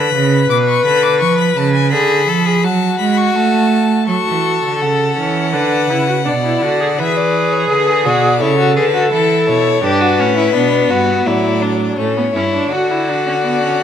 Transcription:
Already playing: D3 B4 B5
0.14 C#3
0.50 B2 D6
0.68 C#6
0.85 D3 B5
1.03 D6
1.20 F3 C#6
1.38 B5
1.56 C#3 A5
1.74 G#5
1.92 D3 G#4 B5
2.28 F3 A4
2.46 G#4
2.64 F#3 F#4 A5
2.99 G#3 B5
3.17 C#6
3.35 A3 A5
4.08 F#3 F#4 A4 C#6
4.27 E3
4.63 D3
4.81 C#3 A4 F#5
5.17 E3 C#4
5.53 D3 D4 B4
5.89 C#3 E4
6.08 F#4
6.26 B2 D4 D5
6.44 E4
6.62 D3 F#4
6.80 G#4
6.98 E3 G#4 B4 E5
7.16 D5
7.52 C#5
7.69 D3 G#4 B4
8.05 B2 F#4 D5
8.40 C#3 E4 A4 C#5
8.59 F#4
8.76 D3 G#4 B4
8.94 F#4
9.12 E3 E4 A4
9.48 B2 C#5
9.83 G2 D4 G4 B4
10.01 F#4
10.19 A2 C#4
10.37 E4
10.54 B2 B3 D4
10.90 G2 F#4
11.26 A2 F#3 E4 D5
11.62 D4
11.98 A2 A3 C#4 C#5
12.17 B3
12.35 G2 C#4 E4
12.53 D4
12.72 D3 F#4 D5
12.90 E4
13.09 D4
13.27 C#4
13.45 B3
13.63 C#4

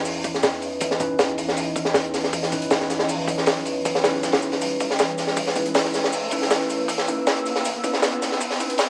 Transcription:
Already playing: E3 C#4 D#4 E4 B4 C#5 D#5, riser
0.05 open hi-hat, shaker
0.24 kick, open hi-hat, shaker
0.34 snare
0.43 snare, open hi-hat, shaker
0.53 snare
0.62 open hi-hat, shaker
0.81 kick, open hi-hat, shaker
0.91 snare
1.00 C#4 D#4 E4 B4, kick, open hi-hat, shaker
1.19 snare, open hi-hat, shaker
1.29 closed hi-hat
1.38 open hi-hat, shaker
1.49 snare
1.57 open hi-hat, shaker
1.76 kick, open hi-hat, shaker
1.85 snare
1.94 snare, open hi-hat, shaker
2.04 closed hi-hat
2.14 snare, open hi-hat, shaker
2.24 snare
2.33 kick, open hi-hat, shaker
2.43 snare
2.52 C#4 D#4 E4 B4, kick, open hi-hat, shaker
2.62 closed hi-hat
2.70 snare, open hi-hat, shaker
2.81 snare
2.90 snare, open hi-hat, shaker
2.99 snare
3.08 open hi-hat, shaker
3.28 kick, open hi-hat, shaker
3.38 snare
3.46 snare, open hi-hat, shaker
3.57 snare
3.65 open hi-hat, shaker
3.85 kick, open hi-hat, shaker
3.95 snare
4.04 C#4 D#4 E4 B4, snare, open hi-hat, shaker
4.13 snare
4.23 snare, open hi-hat, shaker
4.32 snare, open hi-hat
4.42 shaker
4.52 snare, open hi-hat
4.61 open hi-hat, shaker
4.80 kick, open hi-hat, shaker
4.90 snare
4.99 snare, open hi-hat, shaker
5.09 closed hi-hat
5.18 snare, open hi-hat, shaker
5.27 snare
5.37 E6, kick, open hi-hat, shaker
5.47 snare
5.56 C#4 D#4 E4 B4, kick, open hi-hat, shaker
5.66 closed hi-hat
5.75 snare, open hi-hat, shaker
5.85 snare
5.94 snare, open hi-hat, shaker
6.04 snare
6.13 open hi-hat, shaker
6.31 C#4 D#4 E4 B4, kick, open hi-hat, shaker
6.42 snare
6.51 snare, open hi-hat, shaker
6.61 snare
6.70 open hi-hat, shaker
6.88 kick, open hi-hat, shaker
6.98 snare
7.08 C#4 D#4 E4 B4, kick, open hi-hat, shaker
7.27 snare, open hi-hat, shaker
7.37 closed hi-hat
7.46 open hi-hat, shaker
7.56 snare
7.65 open hi-hat, shaker
7.84 C#4 D#4 E4 B4, kick, open hi-hat, shaker
7.93 snare
8.02 snare, open hi-hat, shaker
8.12 closed hi-hat
8.22 snare, open hi-hat, shaker
8.32 snare
8.41 kick, open hi-hat, shaker
8.51 snare
8.60 C#4 D#4 E4 B4, kick, open hi-hat, shaker
8.70 closed hi-hat
8.78 snare, open hi-hat, shaker

